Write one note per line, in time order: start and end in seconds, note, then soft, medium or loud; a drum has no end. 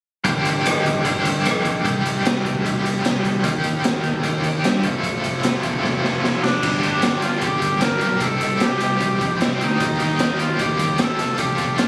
0.24 0.44 G1 medium
0.24 1.03 G2 medium
0.24 1.03 D3 medium
0.24 1.05 G3 medium
0.24 1.04 A#3 medium
0.24 1.05 D4 medium
0.24 1.07 G4 medium
0.24 kick medium
0.24 closed hi-hat medium
0.45 0.64 G1 medium
0.45 closed hi-hat medium
0.66 0.84 G1 medium
0.66 cross-stick medium
0.66 closed hi-hat medium
0.85 1.04 G1 medium
0.85 kick medium
0.85 closed hi-hat soft
0.95 kick medium
1.04 1.42 G1 medium
1.04 1.83 G2 medium
1.04 1.83 D3 medium
1.04 1.84 G3 medium
1.04 1.84 A#3 medium
1.04 1.85 D4 medium
1.04 1.86 G4 medium
1.04 kick medium
1.04 closed hi-hat medium
1.25 closed hi-hat medium
1.45 1.82 A#1 medium
1.45 cross-stick medium
1.45 closed hi-hat medium
1.65 kick medium
1.65 closed hi-hat medium
1.84 2.03 C2 medium
1.84 2.63 C3 medium
1.84 2.64 D#3 medium
1.84 2.64 G3 medium
1.84 2.64 D#4 medium
1.84 2.64 G4 medium
1.84 kick medium
1.84 closed hi-hat medium
2.06 2.24 C2 medium
2.06 closed hi-hat medium
2.25 2.44 C2 medium
2.25 snare loud
2.25 closed hi-hat medium
2.45 2.63 C2 medium
2.45 kick medium
2.45 closed hi-hat medium
2.55 kick medium
2.65 3.01 C2 medium
2.65 3.44 C3 medium
2.65 3.42 D#3 medium
2.65 3.43 G3 medium
2.65 3.44 D#4 medium
2.65 3.44 G4 medium
2.65 kick medium
2.65 closed hi-hat medium
2.86 closed hi-hat soft
3.05 3.41 C2 medium
3.05 snare medium
3.05 closed hi-hat medium
3.24 kick medium
3.24 closed hi-hat medium
3.43 3.63 D#2 medium
3.43 4.22 D#3 medium
3.43 4.23 A#3 medium
3.43 4.24 D#4 medium
3.43 4.24 G4 medium
3.43 kick loud
3.43 closed hi-hat medium
3.64 3.83 D#2 medium
3.64 closed hi-hat soft
3.84 4.03 D#2 medium
3.84 snare loud
3.84 closed hi-hat medium
4.04 4.22 D#2 medium
4.04 kick medium
4.04 closed hi-hat medium
4.14 kick medium
4.23 4.60 D#2 medium
4.23 4.82 D#3 medium
4.23 4.83 A#3 medium
4.23 4.83 D#4 medium
4.23 4.84 G4 medium
4.23 kick medium
4.23 closed hi-hat medium
4.44 closed hi-hat medium
4.64 4.83 G2 medium
4.64 snare medium
4.64 closed hi-hat medium
4.83 5.02 F1 medium
4.83 5.62 F2 medium
4.83 5.63 C3 medium
4.83 5.63 F3 medium
4.83 5.63 A3 medium
4.83 5.62 C4 medium
4.83 5.61 F4 medium
4.83 kick medium
4.83 closed hi-hat medium
5.04 5.22 F1 medium
5.04 kick loud
5.04 closed hi-hat medium
5.24 5.43 F1 medium
5.24 closed hi-hat medium
5.43 5.62 F1 medium
5.43 snare loud
5.43 closed hi-hat medium
5.62 5.82 F1 medium
5.62 6.43 F2 medium
5.62 6.43 C3 medium
5.62 6.43 F3 medium
5.62 6.42 A3 medium
5.62 6.42 C4 medium
5.62 6.41 F4 medium
5.62 kick medium
5.62 closed hi-hat medium
5.73 kick medium
5.83 6.20 F1 medium
5.83 kick medium
5.83 snare soft
6.04 snare soft
6.23 6.60 F1 medium
6.23 snare medium
6.43 6.80 D4 medium
6.43 snare medium
6.62 6.80 G1 medium
6.62 7.03 G2 medium
6.62 7.03 D3 medium
6.62 6.85 G3 medium
6.62 6.84 A#3 medium
6.62 6.83 D4 medium
6.62 6.83 G4 medium
6.62 kick loud
6.62 crash medium
6.83 7.00 G1 medium
6.83 7.02 G3 medium
6.83 7.02 A#3 medium
6.83 7.03 D4 medium
6.83 7.22 D4 medium
6.83 7.05 G4 medium
6.83 closed hi-hat medium
7.02 7.37 G1 medium
7.02 7.25 G3 medium
7.02 7.24 A#3 medium
7.02 7.23 D4 medium
7.02 7.23 G4 medium
7.02 snare loud
7.02 closed hi-hat medium
7.22 7.44 G3 medium
7.22 7.44 A#3 medium
7.22 7.45 D4 medium
7.22 7.45 F4 medium
7.22 7.45 G4 medium
7.22 closed hi-hat medium
7.41 7.60 G1 medium
7.41 8.03 G2 medium
7.41 8.03 D3 medium
7.41 7.82 G3 medium
7.41 7.83 A#3 medium
7.41 7.83 G4 medium
7.41 7.84 G4 medium
7.41 kick loud
7.41 closed hi-hat medium
7.46 7.83 D4 medium
7.62 7.80 G1 medium
7.62 kick medium
7.62 closed hi-hat medium
7.81 8.00 G1 medium
7.81 8.04 G3 medium
7.81 8.02 A#3 medium
7.81 8.02 D4 medium
7.81 8.01 G4 medium
7.81 8.23 A#4 medium
7.81 snare medium
7.81 closed hi-hat medium
8.01 8.19 B1 medium
8.01 8.22 G3 medium
8.01 8.22 A#3 medium
8.01 8.21 D4 medium
8.01 8.24 G4 medium
8.01 closed hi-hat medium
8.20 8.39 C2 medium
8.20 8.62 C3 medium
8.20 8.61 G3 medium
8.20 8.44 C4 medium
8.20 8.43 D#4 medium
8.20 8.41 G4 medium
8.20 8.65 A4 medium
8.20 kick loud
8.20 closed hi-hat medium
8.41 8.59 C2 medium
8.41 8.62 C4 soft
8.41 8.63 D#4 medium
8.41 8.64 G4 medium
8.41 closed hi-hat medium
8.60 8.79 C2 medium
8.60 9.02 G3 medium
8.60 8.84 C4 medium
8.60 8.82 D#4 medium
8.60 9.42 G4 medium
8.60 snare loud
8.60 closed hi-hat medium
8.64 8.81 G4 medium
8.80 8.99 C2 medium
8.80 9.03 D#4 medium
8.80 9.03 G4 medium
8.80 closed hi-hat medium
8.85 9.02 C4 soft
9.00 9.18 C2 medium
9.00 9.62 C3 medium
9.00 9.41 G3 medium
9.00 9.42 C4 medium
9.00 9.42 D#4 medium
9.00 9.43 G4 loud
9.00 kick medium
9.00 closed hi-hat medium
9.21 9.38 F2 medium
9.21 kick medium
9.21 closed hi-hat soft
9.41 9.59 C2 medium
9.41 9.80 G3 medium
9.41 9.63 C4 medium
9.41 9.61 D#4 medium
9.41 9.60 G4 medium
9.41 snare loud
9.41 closed hi-hat medium
9.61 9.79 D2 medium
9.61 9.81 C4 medium
9.61 9.98 D#4 medium
9.61 9.81 D#4 medium
9.61 9.80 G4 medium
9.61 closed hi-hat medium
9.80 9.98 D#2 medium
9.80 10.21 D#3 medium
9.80 10.19 G3 medium
9.80 10.01 A#3 medium
9.80 10.00 D#4 medium
9.80 9.99 G4 medium
9.80 kick loud
9.80 closed hi-hat medium
10.00 10.18 D#2 medium
10.00 10.20 A#3 medium
10.00 10.21 D#4 medium
10.00 10.43 D#4 medium
10.00 10.22 G4 medium
10.00 closed hi-hat medium
10.19 10.55 D#2 medium
10.19 10.59 G3 medium
10.19 10.41 A#3 medium
10.19 10.40 D#4 medium
10.19 10.38 G4 medium
10.19 snare loud
10.19 closed hi-hat medium
10.39 10.59 A#3 medium
10.39 10.60 D#4 medium
10.39 10.63 F4 medium
10.39 10.60 G4 medium
10.39 closed hi-hat medium
10.59 10.77 D#2 medium
10.59 11.18 D#3 medium
10.59 10.97 G3 medium
10.59 10.99 A#3 medium
10.59 10.99 D#4 medium
10.59 11.03 G4 medium
10.59 11.00 G4 medium
10.59 kick medium
10.59 closed hi-hat medium
10.79 10.97 D#2 medium
10.79 kick medium
10.79 closed hi-hat medium
10.98 11.17 D#2 medium
10.98 11.18 G3 medium
10.98 11.19 A#3 medium
10.98 11.19 D#4 medium
10.98 11.18 G4 medium
10.98 11.37 A4 medium
10.98 snare loud
10.98 closed hi-hat medium
11.19 11.37 F1 medium
11.19 11.39 F3 medium
11.19 11.39 C4 medium
11.19 11.41 F4 medium
11.19 11.40 A4 medium
11.19 closed hi-hat medium
11.38 11.56 F1 medium
11.38 11.79 F3 medium
11.38 11.60 C4 medium
11.38 11.60 F4 medium
11.38 11.80 G4 medium
11.38 11.58 A4 medium
11.38 kick medium
11.38 closed hi-hat medium
11.58 11.76 F1 medium
11.58 11.79 C4 medium
11.58 11.80 F4 medium
11.58 11.80 A4 medium
11.58 kick medium
11.58 closed hi-hat medium
11.78 11.88 F1 medium
11.78 11.88 F3 medium
11.78 11.88 C4 medium
11.78 11.88 F4 medium
11.78 11.88 A4 medium
11.78 snare loud
11.78 closed hi-hat medium